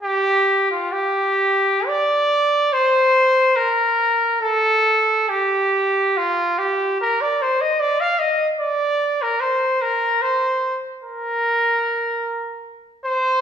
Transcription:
X:1
M:4/4
L:1/16
Q:1/4=72
K:Gm
V:1 name="Trumpet"
G3 F G4 d4 c4 | B4 A4 G4 F2 G2 | B d c e d f e2 d3 B c2 B2 | c3 z B8 z2 c2 |]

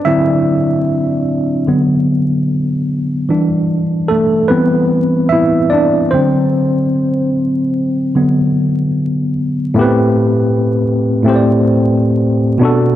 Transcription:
X:1
M:4/4
L:1/16
Q:"Swing 16ths" 1/4=74
K:Ador
V:1 name="Tine electric piano"
[Ee]6 z8 z2 | z4 [A,A]2 [B,B]4 [Ee]2 [Dd]2 c2- | c4 z12 | [A,,A,B,CGB]4- [A,,A,B,CGB] z2 [A,,A,CGcd]4- [A,,A,CGcd] z2 [B,,B,DFA]2 |]
V:2 name="Tine electric piano" clef=bass
[D,F,C]2 z6 [D,F,B,]2 z6 | [E,G,D]6 [E,G,C]8 [D,F,C]2 | z8 [D,F,B,]6 z2 | z16 |]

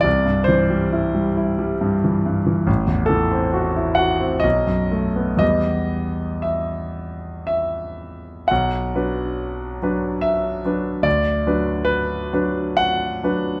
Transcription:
X:1
M:3/4
L:1/16
Q:1/4=68
K:Em
V:1 name="Grand piano"
d2 c8- c2 | z2 A4 f2 ^d4 | ^d4 e4 e4 | [K:Bm] f8 e4 |
d4 B4 f4 |]
V:2 name="Grand piano" clef=bass
C,, G,, E, G, E G, E G, G,, E, G,, E, | A,,, E,, E, C F E F C B,,, F,, A, B, | [E,,G,B,G]12 | [K:Bm] B,,,2 [F,DB]4 [F,DB]4 [F,DB]2 |
D,,2 [F,DB]4 [F,DB]4 [F,DB]2 |]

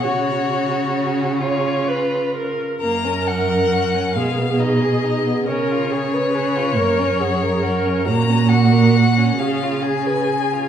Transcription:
X:1
M:6/8
L:1/16
Q:3/8=45
K:F#
V:1 name="Violin"
c6 z6 | a2 f4 e2 d4 | c12 | a2 f4 e2 g4 |]
V:2 name="Viola"
F6 c2 B2 A2 | A6 G6 | A2 G2 B2 A2 G2 A2 | F6 G6 |]
V:3 name="Violin"
F6 E4- E z | A, C F A F C G, B, D G D B, | C E G B G E A, C F A F C | A, C F A F C C E G B G E |]
V:4 name="Cello" clef=bass
C,12 | F,,6 B,,6 | C,6 F,,6 | A,,6 C,6 |]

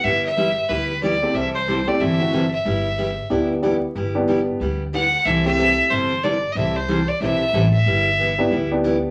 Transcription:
X:1
M:4/4
L:1/16
Q:"Swing" 1/4=184
K:G
V:1 name="Fiddle"
e2 e6 B4 d4 | e2 c4 d2 e6 e2- | e8- e2 z6 | z12 f4 |
e2 e6 c4 d3- d/2 _e/2 | e2 c4 d2 e6 e2- | e8- e2 z6 |]
V:2 name="Upright piano"
z12 z2 [A,CEG]2 | z6 [A,CEG]2 z2 [A,CEF]2 z4 | z8 [B,DEG]4 [B,DEG]2 z2 | z2 [B,DEG]6 z8 |
z2 [A,CEG]6 z8 | z16 | z6 [B,DEG]2 z2 [B,DEG]6 |]
V:3 name="Steel-string acoustic guitar"
[G,B,EG]2 z2 [G,B,EG]2 z2 [G,B,EG]2 z2 [G,B,EG]2 z2 | [C,E,G,CEA]2 z2 [C,E,G,CEA]2 z2 [C,E,G,CEA]2 z2 [C,E,G,CEA]2 z2 | [G,B,EG]2 z2 [G,B,EG]2 z2 [G,B,EG]2 z2 [G,B,EG]2 z2 | [G,B,EG]2 z2 [G,B,EG]2 z2 [G,B,EG]2 z2 [G,B,EG]2 z2 |
[C,E,G,CEA]2 z2 [C,E,G,CEA]2 z2 [C,E,G,CEA]2 z2 [C,E,G,CEA]2 z2 | [C,E,G,CEA]2 z2 [C,E,G,CEA]2 z2 [C,E,G,CEA]2 z2 [C,E,G,CEA]2 z2 | [G,B,EG]2 z2 [G,B,EG]2 z2 [G,B,EG]2 z2 [G,B,EG]2 z2 |]
V:4 name="Upright bass" clef=bass
G,,,8 D,,8 | C,,8 G,,,8 | G,,,8 D,,8 | G,,,8 D,,8 |
C,,8 G,,,8 | C,,8 B,,,4 A,,,4 | G,,,8 D,,8 |]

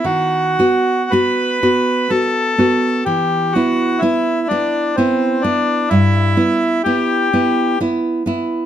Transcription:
X:1
M:3/4
L:1/8
Q:1/4=63
K:Em
V:1 name="Bandoneon"
F2 B2 A2 | G F E D C D | E2 G2 z2 |]
V:2 name="Nylon-string guitar"
^D, [B,F] [B,F] [B,F] [B,F] [B,F] | E, [B,E] [B,E] [B,E] [B,E] [B,E] | G,, [B,E] [B,E] [B,E] [B,E] [B,E] |]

